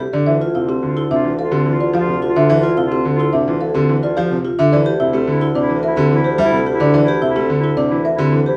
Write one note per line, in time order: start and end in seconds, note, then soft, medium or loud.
0.00 0.13 D2 medium
0.00 0.18 G4 medium
0.13 0.32 D3 medium
0.13 0.32 D4 medium
0.13 0.32 D5 medium
0.26 4.57 D2 medium
0.26 0.46 E3 medium
0.26 0.48 F4 soft
0.26 0.45 E5 medium
0.41 0.60 F4 medium
0.55 0.74 C3 medium
0.55 0.73 E4 medium
0.55 0.76 F4 soft
0.55 0.73 F5 medium
0.69 0.87 C4 medium
0.69 0.87 G4 medium
0.83 1.01 D3 medium
0.83 1.05 F4 medium
0.97 1.15 E4 medium
0.97 1.15 A4 medium
1.11 1.29 C3 medium
1.11 1.29 D4 medium
1.11 1.33 F4 medium
1.11 1.29 E5 medium
1.24 1.43 E3 medium
1.39 1.62 F4 medium
1.39 1.57 A4 medium
1.39 1.57 F5 medium
1.51 1.70 D3 medium
1.51 1.71 C4 medium
1.51 1.71 G4 loud
1.66 1.84 E3 medium
1.71 1.91 F4 medium
1.80 1.99 F4 medium
1.80 1.99 D5 medium
1.93 2.12 F3 medium
1.93 2.12 G4 medium
1.93 2.13 F5 loud
2.00 2.20 F4 medium
2.08 2.26 C3 medium
2.22 2.40 F4 medium
2.22 2.40 G4 medium
2.29 2.49 F4 medium
2.36 2.54 D3 loud
2.36 2.54 D4 medium
2.36 2.48 E5 loud
2.49 2.68 E3 loud
2.49 2.68 E5 medium
2.58 2.78 F4 medium
2.63 2.82 F4 loud
2.77 2.96 C3 medium
2.77 2.96 E4 medium
2.77 2.96 F5 medium
2.86 3.06 F4 medium
2.92 3.10 C4 medium
2.92 3.10 G4 loud
3.05 3.24 D3 medium
3.15 3.35 F4 medium
3.19 3.38 E4 medium
3.19 3.38 A4 medium
3.33 3.52 C3 medium
3.33 3.51 D4 medium
3.33 3.51 E5 loud
3.44 3.64 F4 medium
3.48 3.66 E3 medium
3.61 3.79 A4 medium
3.61 3.79 F5 medium
3.72 3.93 D3 loud
3.72 3.93 C4 medium
3.72 3.92 F4 medium
3.72 3.93 G4 loud
3.89 4.07 E3 medium
4.01 4.21 F4 medium
4.01 4.21 D5 medium
4.17 4.35 F3 loud
4.17 4.35 G4 medium
4.17 4.35 F5 loud
4.29 4.49 C3 medium
4.29 4.49 F4 soft
4.45 4.63 F4 medium
4.45 4.63 G4 medium
4.59 4.77 D3 loud
4.59 4.77 D4 medium
4.59 4.77 E5 loud
4.72 8.57 D2 medium
4.72 4.91 E3 loud
4.72 4.93 E4 soft
4.72 4.90 D5 loud
4.86 5.04 G4 loud
5.00 5.18 C3 medium
5.00 5.18 E4 medium
5.00 5.21 E4 medium
5.00 5.18 E5 medium
5.13 5.32 A3 loud
5.13 5.32 C4 medium
5.13 5.32 G4 loud
5.28 5.46 D3 medium
5.28 5.50 E4 medium
5.41 5.60 E4 medium
5.41 5.60 A4 medium
5.55 5.74 C3 medium
5.55 5.74 D4 medium
5.55 5.78 E4 medium
5.55 5.74 D5 loud
5.70 5.88 E3 medium
5.83 6.01 A#4 medium
5.83 6.02 E5 medium
5.87 6.07 E4 medium
5.96 6.15 D3 loud
5.96 6.15 C4 medium
5.96 6.16 G4 loud
6.11 6.29 E3 medium
6.11 6.35 E4 medium
6.24 6.43 G4 medium
6.24 6.43 C5 medium
6.38 6.57 G3 loud
6.38 6.57 A4 medium
6.38 6.57 E5 loud
6.44 6.65 E4 loud
6.53 6.71 C3 medium
6.66 6.85 G4 medium
6.73 6.93 E4 medium
6.80 6.98 D3 loud
6.80 6.99 D4 medium
6.80 6.94 D5 loud
6.94 7.12 E3 loud
6.94 7.13 D5 loud
7.02 7.22 E4 medium
7.08 7.26 G4 loud
7.22 7.40 C3 medium
7.22 7.40 E4 medium
7.22 7.40 E5 medium
7.30 7.50 E4 medium
7.36 7.54 A3 loud
7.36 7.54 C4 medium
7.36 7.54 G4 loud
7.50 7.68 D3 medium
7.58 7.79 E4 medium
7.63 7.82 E4 medium
7.63 7.82 A4 medium
7.77 7.96 C3 medium
7.77 7.96 D4 medium
7.77 7.96 D5 loud
7.87 8.07 E4 medium
7.91 8.10 E3 medium
8.05 8.23 A#4 medium
8.05 8.23 E5 medium
8.15 8.37 D3 loud
8.15 8.37 C4 medium
8.15 8.36 E4 medium
8.20 8.38 G4 medium
8.32 8.51 E3 medium
8.44 8.57 E4 medium
8.44 8.57 G4 medium
8.44 8.57 C5 medium